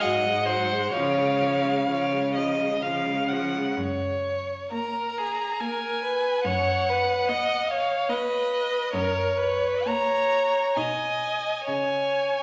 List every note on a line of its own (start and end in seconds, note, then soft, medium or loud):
0.00 0.82 G#2 medium
0.00 0.26 F#3 medium
0.00 0.47 D#5 medium
0.00 0.94 F#5 medium
0.25 0.49 G#3 soft
0.45 0.72 F#3 soft
0.45 0.91 C5 medium
0.70 0.93 G#3 soft
0.92 1.77 C#3 medium
0.92 1.19 F3 soft
0.92 1.76 C#5 medium
0.92 2.83 F5 medium
1.17 1.42 G#3 soft
1.41 1.65 F3 soft
1.64 1.88 G#3 soft
1.87 2.73 C#3 medium
1.87 2.14 F3 soft
1.87 2.32 C#5 medium
2.13 2.38 G#3 soft
2.35 2.61 F3 soft
2.35 2.84 D#5 medium
2.60 2.83 G#3 soft
2.82 3.66 C#3 medium
2.82 3.07 F3 soft
2.82 3.30 F5 medium
3.06 3.33 G#3 soft
3.28 3.55 F3 soft
3.28 3.75 F#5 medium
3.54 3.77 G#3 soft
3.76 4.55 F#2 medium
3.76 4.69 C#5 medium
4.71 5.38 A#3 soft
4.71 5.20 A#4 soft
4.71 5.61 A#5 medium
5.18 5.61 G#4 soft
5.59 6.24 A#3 soft
5.59 6.02 A#4 soft
5.59 6.44 G#5 medium
6.03 6.47 B4 medium
6.44 7.12 F#2 medium
6.44 6.90 C#5 medium
6.44 7.65 F#5 medium
6.89 7.30 B4 medium
7.29 7.89 B3 medium
7.29 7.72 D#5 medium
7.68 8.11 C#5 medium
7.68 8.11 F5 medium
8.09 8.72 B3 medium
8.09 8.92 B4 medium
8.09 8.93 D#5 medium
8.93 9.68 F#2 medium
8.93 9.39 A#4 medium
8.93 9.88 C#5 medium
9.37 9.88 B4 medium
9.86 10.54 A#3 soft
9.86 10.78 C#5 medium
9.86 10.77 A#5 medium
10.76 11.50 B2 soft
10.76 11.45 D#4 soft
10.76 11.66 D#5 medium
10.76 11.67 G#5 medium
11.67 12.43 C#3 soft
11.67 12.43 C#5 soft
11.67 12.43 G#5 medium